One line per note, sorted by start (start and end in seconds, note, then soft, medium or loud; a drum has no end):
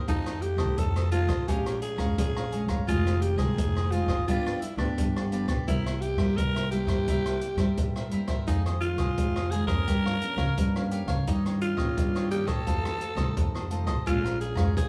0.08 0.53 F2 loud
0.08 0.75 F2 medium
0.08 0.41 D#3 medium
0.08 0.42 A3 medium
0.08 0.42 C4 medium
0.08 0.43 D#4 loud
0.08 0.24 F4 medium
0.08 0.24 A4 medium
0.08 0.25 C5 medium
0.08 0.25 D#5 medium
0.08 kick medium
0.08 closed hi-hat medium
0.26 0.41 A4 soft
0.26 0.41 C5 soft
0.26 0.42 D#5 soft
0.26 cross-stick medium
0.26 closed hi-hat soft
0.42 0.80 G4 medium
0.42 muted cavaquinho stroke soft
0.42 closed hi-hat soft
0.56 0.73 C2 medium
0.56 1.07 D#3 medium
0.56 1.07 A3 medium
0.56 1.07 C4 medium
0.56 0.94 A4 medium
0.56 0.93 C5 medium
0.56 0.93 D#5 medium
0.56 kick medium
0.56 cross-stick medium
0.78 1.23 F2 medium
0.78 1.44 C3 medium
0.78 1.11 A4 loud
0.78 kick medium
0.78 closed hi-hat medium
0.96 1.11 A4 soft
0.96 1.11 C5 soft
0.96 1.12 D#5 soft
0.96 cross-stick medium
0.96 closed hi-hat soft
1.11 1.42 D#3 medium
1.11 1.42 A3 soft
1.11 1.42 C4 medium
1.11 1.28 F4 medium
1.11 1.49 F4 loud
1.11 1.29 A4 medium
1.11 1.28 C5 soft
1.11 1.27 D#5 medium
1.11 closed hi-hat soft
1.26 1.43 B1 medium
1.26 1.46 A4 medium
1.26 1.46 C5 medium
1.26 1.45 D#5 medium
1.26 kick medium
1.26 cross-stick medium
1.26 closed hi-hat soft
1.48 1.78 A#1 medium
1.48 2.15 A#2 medium
1.48 1.95 F3 medium
1.48 1.95 G#3 medium
1.48 1.95 C#4 medium
1.48 1.81 G4 loud
1.48 1.64 G#4 medium
1.48 1.64 C#5 medium
1.48 1.65 F5 medium
1.48 1.65 A#5 medium
1.48 kick medium
1.48 closed hi-hat medium
1.66 1.81 C#5 soft
1.66 1.81 F5 soft
1.66 1.82 A#5 medium
1.66 cross-stick medium
1.66 closed hi-hat soft
1.82 2.15 G#4 medium
1.82 muted cavaquinho stroke soft
1.82 closed hi-hat soft
1.96 2.13 F2 loud
1.96 2.46 F3 medium
1.96 2.47 G#3 medium
1.96 2.47 C#4 medium
1.96 2.34 C#5 medium
1.96 2.33 F5 medium
1.96 2.33 A#5 medium
1.96 kick medium
1.96 cross-stick medium
1.96 closed hi-hat soft
2.18 2.63 A#1 loud
2.18 2.85 F2 medium
2.18 2.67 G#4 medium
2.18 kick medium
2.18 closed hi-hat medium
2.36 2.51 C#5 soft
2.36 2.52 F5 soft
2.36 2.52 A#5 soft
2.36 cross-stick medium
2.52 2.82 F3 medium
2.52 2.82 G#3 medium
2.52 2.82 C#4 medium
2.52 2.68 G#4 soft
2.52 2.69 C#5 soft
2.52 2.68 F5 medium
2.52 2.67 A#5 medium
2.52 closed hi-hat soft
2.66 2.83 G1 medium
2.66 2.86 C#5 medium
2.66 2.86 F5 medium
2.66 2.85 A#5 medium
2.66 kick medium
2.66 cross-stick medium
2.66 closed hi-hat soft
2.88 3.33 F1 loud
2.88 3.55 F2 medium
2.88 3.35 D#3 medium
2.88 3.35 G#3 medium
2.88 3.35 C4 medium
2.88 3.04 F4 medium
2.88 3.23 F4 loud
2.88 3.04 G#4 medium
2.88 3.05 C5 medium
2.88 3.05 D#5 medium
2.88 kick medium
2.88 closed hi-hat medium
3.06 3.21 G#4 soft
3.06 3.21 C5 soft
3.06 3.22 D#5 soft
3.06 cross-stick medium
3.06 closed hi-hat soft
3.21 3.39 G4 medium
3.21 muted cavaquinho stroke soft
3.21 closed hi-hat soft
3.36 3.53 C2 medium
3.36 3.86 D#3 medium
3.36 3.86 G#3 medium
3.36 3.87 C4 medium
3.36 3.93 G#4 loud
3.36 3.74 G#4 medium
3.36 3.73 C5 medium
3.36 3.73 D#5 medium
3.36 kick medium
3.36 cross-stick medium
3.36 closed hi-hat soft
3.58 4.03 F1 loud
3.58 4.25 C3 medium
3.58 kick medium
3.58 closed hi-hat medium
3.76 3.91 G#4 soft
3.76 3.92 C5 soft
3.76 3.92 D#5 medium
3.76 cross-stick medium
3.91 4.22 D#3 medium
3.91 4.22 G#3 medium
3.91 4.22 C4 medium
3.91 4.26 F4 medium
3.91 4.08 F4 soft
3.91 4.09 G#4 medium
3.91 4.08 C5 medium
3.91 4.07 D#5 medium
3.91 closed hi-hat medium
4.06 4.23 F#1 medium
4.06 4.26 C5 medium
4.06 4.25 D#5 medium
4.06 kick medium
4.06 cross-stick medium
4.10 4.26 G#4 medium
4.27 4.58 G1 medium
4.27 4.94 G2 medium
4.27 4.61 F3 medium
4.27 4.61 B3 medium
4.27 4.61 D4 medium
4.27 4.62 F4 medium
4.27 4.44 F4 medium
4.27 4.45 G4 medium
4.27 4.45 B4 medium
4.27 4.45 D5 medium
4.27 kick medium
4.27 closed hi-hat medium
4.46 4.62 G4 soft
4.46 4.62 B4 soft
4.46 4.62 D5 medium
4.46 cross-stick medium
4.61 4.77 E4 medium
4.61 muted cavaquinho stroke soft
4.61 closed hi-hat medium
4.76 4.93 D2 medium
4.76 5.26 F3 medium
4.76 5.26 B3 medium
4.76 5.27 D4 medium
4.76 5.26 D4 medium
4.76 5.13 B4 medium
4.76 5.13 D5 medium
4.76 kick medium
4.76 cross-stick medium
4.80 5.14 G4 medium
4.98 5.42 G1 loud
4.98 5.64 D3 medium
4.98 kick medium
4.98 closed hi-hat medium
5.16 5.31 G4 soft
5.16 5.32 B4 soft
5.16 5.32 D5 soft
5.16 cross-stick medium
5.32 5.53 F3 medium
5.32 5.53 B3 medium
5.32 5.53 D4 medium
5.32 5.48 F4 soft
5.32 5.48 G4 medium
5.32 5.48 B4 medium
5.32 5.47 D5 medium
5.32 closed hi-hat soft
5.46 5.62 B1 medium
5.46 5.66 B4 medium
5.46 5.65 D5 medium
5.46 kick medium
5.46 cross-stick medium
5.46 closed hi-hat soft
5.50 5.66 G4 medium
5.68 6.12 C2 medium
5.68 6.34 C3 medium
5.68 6.01 G3 medium
5.68 6.01 A#3 medium
5.68 6.03 E4 medium
5.68 5.84 E4 medium
5.68 6.01 E4 medium
5.68 5.84 A#4 medium
5.68 5.85 C5 medium
5.68 5.85 E5 medium
5.68 kick medium
5.68 closed hi-hat medium
5.86 6.01 A#4 soft
5.86 6.01 C5 soft
5.86 6.01 E5 soft
5.86 cross-stick medium
5.86 closed hi-hat soft
6.01 6.39 G4 medium
6.01 muted cavaquinho stroke soft
6.01 closed hi-hat soft
6.16 6.33 G2 medium
6.16 6.66 G3 medium
6.16 6.66 A#3 medium
6.16 6.67 E4 medium
6.16 6.53 C5 medium
6.16 6.53 E5 medium
6.16 kick medium
6.16 cross-stick medium
6.20 6.54 A#4 medium
6.37 6.82 C2 medium
6.37 7.04 G2 medium
6.37 6.71 A#4 loud
6.37 kick medium
6.37 closed hi-hat medium
6.55 6.71 A#4 soft
6.55 6.71 C5 soft
6.55 6.71 E5 soft
6.55 cross-stick medium
6.55 closed hi-hat soft
6.71 7.02 G3 medium
6.71 7.02 A#3 medium
6.71 6.88 E4 soft
6.71 7.02 E4 medium
6.71 8.08 G4 loud
6.71 6.88 A#4 medium
6.71 6.87 C5 medium
6.71 6.86 E5 medium
6.71 closed hi-hat soft
6.86 7.03 G2 medium
6.86 7.06 A#4 medium
6.86 7.05 C5 medium
6.86 7.05 E5 medium
6.86 kick medium
6.86 cross-stick medium
6.86 closed hi-hat soft
7.08 7.37 C2 medium
7.08 7.74 C3 medium
7.08 7.41 G3 medium
7.08 7.41 A#3 medium
7.08 7.24 E4 medium
7.08 7.41 E4 medium
7.08 7.24 A#4 medium
7.08 7.24 C5 medium
7.08 7.25 E5 medium
7.08 kick medium
7.08 closed hi-hat medium
7.26 7.41 A#4 soft
7.26 7.41 C5 soft
7.26 7.42 E5 medium
7.26 cross-stick medium
7.26 closed hi-hat soft
7.41 muted cavaquinho stroke soft
7.41 closed hi-hat soft
7.56 7.72 G2 medium
7.56 8.06 G3 medium
7.56 8.06 A#3 medium
7.56 8.06 E4 medium
7.56 7.93 C5 medium
7.56 7.93 E5 medium
7.56 kick medium
7.56 cross-stick medium
7.56 closed hi-hat soft
7.60 7.93 A#4 medium
7.77 8.44 G2 medium
7.77 8.09 A#2 medium
7.77 kick medium
7.77 closed hi-hat medium
7.96 8.11 A#4 soft
7.96 8.12 C5 soft
7.96 8.12 E5 soft
7.96 cross-stick medium
8.11 8.44 G2 medium
8.11 8.42 G3 medium
8.11 8.42 A#3 medium
8.11 8.28 E4 soft
8.11 8.42 E4 medium
8.11 8.29 A#4 soft
8.11 8.28 C5 medium
8.11 8.27 E5 medium
8.11 closed hi-hat soft
8.28 8.46 A#4 medium
8.28 8.46 C5 medium
8.28 8.45 E5 medium
8.28 kick medium
8.28 cross-stick medium
8.28 closed hi-hat soft
8.47 8.92 F2 medium
8.47 9.14 F2 medium
8.47 8.93 D#3 medium
8.47 8.93 G#3 medium
8.47 8.93 C4 medium
8.47 8.63 D#4 medium
8.47 8.64 F4 medium
8.47 8.64 G#4 medium
8.47 8.64 C5 medium
8.47 8.65 D#5 medium
8.47 kick medium
8.47 closed hi-hat medium
8.66 8.81 G#4 soft
8.66 8.81 C5 soft
8.66 8.81 D#5 soft
8.66 cross-stick medium
8.66 closed hi-hat soft
8.81 9.52 F4 medium
8.81 muted cavaquinho stroke soft
8.81 closed hi-hat medium
8.96 9.12 C2 medium
8.96 9.33 C5 medium
8.96 9.33 D#5 medium
8.96 kick medium
8.96 cross-stick medium
8.96 closed hi-hat soft
9.00 9.34 G#4 medium
9.18 9.62 F2 medium
9.18 9.84 C3 medium
9.18 9.38 D#3 medium
9.18 9.39 G#3 medium
9.18 9.39 C4 medium
9.18 kick medium
9.18 closed hi-hat medium
9.36 9.51 G#4 soft
9.36 9.51 C5 soft
9.36 9.51 D#5 medium
9.36 cross-stick medium
9.51 9.64 D#3 medium
9.51 9.64 G#3 medium
9.51 9.65 C4 medium
9.51 9.68 F4 medium
9.51 9.67 G#4 loud
9.51 9.68 G#4 medium
9.51 9.67 C5 medium
9.51 9.66 D#5 medium
9.51 closed hi-hat medium
9.66 9.82 F2 medium
9.66 10.16 F3 medium
9.66 10.16 A#3 medium
9.66 10.16 C#4 medium
9.66 9.86 G#4 medium
9.66 10.87 A#4 loud
9.66 9.85 C5 medium
9.66 9.85 D#5 medium
9.66 kick medium
9.66 cross-stick medium
9.88 10.17 G2 medium
9.88 10.54 G2 medium
9.88 10.04 G4 medium
9.88 10.04 A#4 medium
9.88 10.04 C#5 medium
9.88 10.04 F5 medium
9.88 kick medium
9.88 closed hi-hat medium
10.06 10.21 A#4 soft
10.06 10.21 C#5 soft
10.06 10.21 F5 medium
10.06 cross-stick medium
10.21 10.43 F3 medium
10.21 10.43 A#3 medium
10.21 10.43 C#4 medium
10.21 muted cavaquinho stroke soft
10.21 closed hi-hat medium
10.36 10.52 C#3 medium
10.36 10.73 A#4 medium
10.36 10.73 C#5 medium
10.36 10.72 F5 medium
10.36 kick medium
10.36 cross-stick medium
10.58 11.02 G2 loud
10.58 11.24 G2 medium
10.58 10.68 F3 medium
10.58 10.68 A#3 medium
10.58 10.68 C#4 medium
10.58 kick medium
10.58 closed hi-hat medium
10.76 11.22 F3 medium
10.76 11.22 A#3 medium
10.76 11.23 C#4 medium
10.76 10.91 A#4 soft
10.76 10.92 C#5 soft
10.76 10.92 F5 soft
10.76 cross-stick medium
10.91 11.08 G4 medium
10.91 11.08 A#4 medium
10.91 11.08 C#5 medium
10.91 11.06 F5 medium
10.91 closed hi-hat soft
11.06 11.22 C#3 medium
11.06 11.25 C#5 medium
11.06 11.25 F5 medium
11.06 kick medium
11.06 cross-stick medium
11.06 closed hi-hat soft
11.10 11.26 A#4 medium
11.27 11.94 G2 medium
11.27 11.72 G2 loud
11.27 11.74 D#3 medium
11.27 11.74 A#3 medium
11.27 11.74 C#4 medium
11.27 11.43 D#4 medium
11.27 11.44 D#4 medium
11.27 11.44 G4 medium
11.27 11.44 C#5 medium
11.27 11.44 D#5 medium
11.27 kick medium
11.27 closed hi-hat medium
11.45 11.60 G4 soft
11.45 11.61 C#5 soft
11.45 11.61 D#5 soft
11.45 cross-stick medium
11.45 closed hi-hat soft
11.61 12.28 F4 medium
11.61 muted cavaquinho stroke soft
11.61 closed hi-hat medium
11.75 11.92 A#1 medium
11.75 12.26 D#3 medium
11.75 12.26 A#3 medium
11.75 12.26 C#4 medium
11.75 12.13 G4 medium
11.75 12.12 C#5 medium
11.75 12.12 D#5 medium
11.75 kick medium
11.75 cross-stick medium
11.97 12.64 G2 medium
11.97 12.42 G2 loud
11.97 kick medium
11.97 closed hi-hat medium
12.15 12.30 G4 soft
12.15 12.31 C#5 soft
12.15 12.31 D#5 medium
12.15 cross-stick medium
12.15 closed hi-hat soft
12.31 12.52 D#3 medium
12.31 12.52 A#3 medium
12.31 12.53 C#4 medium
12.31 12.47 D#4 soft
12.31 12.49 G4 loud
12.31 12.48 G4 medium
12.31 12.47 C#5 medium
12.31 12.46 D#5 medium
12.31 closed hi-hat soft
12.45 12.62 A#1 medium
12.45 12.65 G4 medium
12.45 13.71 A4 loud
12.45 12.65 C#5 medium
12.45 12.64 D#5 medium
12.45 kick medium
12.45 cross-stick medium
12.45 closed hi-hat soft
12.66 12.97 F2 medium
12.66 13.34 F2 medium
12.66 13.00 D#3 medium
12.66 13.00 A3 medium
12.66 13.00 C4 medium
12.66 12.83 F4 medium
12.66 12.83 A4 medium
12.66 12.84 C5 medium
12.66 12.84 D#5 medium
12.66 kick medium
12.66 closed hi-hat medium
12.85 12.99 A4 soft
12.85 13.00 C5 medium
12.85 13.00 D#5 medium
12.85 cross-stick medium
12.85 closed hi-hat soft
13.00 muted cavaquinho stroke soft
13.00 closed hi-hat soft
13.15 13.32 C2 medium
13.15 13.65 D#3 medium
13.15 13.66 A3 medium
13.15 13.66 C4 medium
13.15 13.52 A4 medium
13.15 13.52 C5 medium
13.15 13.51 D#5 medium
13.15 kick medium
13.15 cross-stick medium
13.15 closed hi-hat soft
13.37 13.81 F2 loud
13.37 14.04 C3 medium
13.37 kick medium
13.37 closed hi-hat medium
13.54 13.70 A4 soft
13.54 13.71 C5 soft
13.54 13.70 D#5 soft
13.54 cross-stick medium
13.70 13.92 D#3 medium
13.70 13.92 A3 medium
13.70 13.92 C4 medium
13.70 13.87 F4 soft
13.70 13.88 A4 medium
13.70 13.87 C5 medium
13.70 13.85 D#5 soft
13.70 closed hi-hat soft
13.85 14.02 B1 medium
13.85 14.05 A4 medium
13.85 14.05 C5 medium
13.85 14.04 D#5 medium
13.85 kick medium
13.85 cross-stick medium
13.85 closed hi-hat soft
14.06 14.51 A#1 loud
14.06 14.73 A#2 medium
14.06 14.54 G#3 medium
14.06 14.54 C#4 medium
14.06 14.39 F4 loud
14.06 14.54 F4 medium
14.06 14.22 G#4 medium
14.06 14.23 C#5 medium
14.06 14.23 F5 medium
14.06 14.23 A#5 medium
14.06 kick medium
14.06 closed hi-hat medium
14.24 14.39 C#5 soft
14.24 14.40 F5 medium
14.24 14.40 A#5 medium
14.24 cross-stick medium
14.24 closed hi-hat soft
14.40 14.74 G#4 medium
14.40 muted cavaquinho stroke soft
14.40 closed hi-hat soft
14.55 14.72 F2 medium
14.55 14.88 G#3 medium
14.55 14.88 C#4 medium
14.55 14.88 F4 medium
14.55 14.88 C#5 medium
14.55 14.88 F5 medium
14.55 14.88 A#5 medium
14.55 kick medium
14.55 cross-stick medium
14.55 closed hi-hat soft
14.77 14.88 A#1 medium
14.77 14.88 F2 medium
14.77 14.88 G#4 loud
14.77 kick medium
14.77 closed hi-hat medium